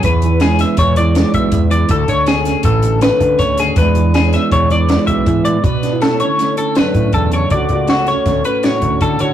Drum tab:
HH |xxxxxxxxxx|xxxxxxxxxx|xxxxxxxxxx|xxxxxxxxxx|
SD |--oo--o---|--oo--o-oo|--oo--o---|-oo-o-o---|
BD |o---o--oo-|oo--o--oo-|o---o--oo-|o------oo-|

HH |xxxxxxxxxx|
SD |--ooo-o---|
BD |oo--o--oo-|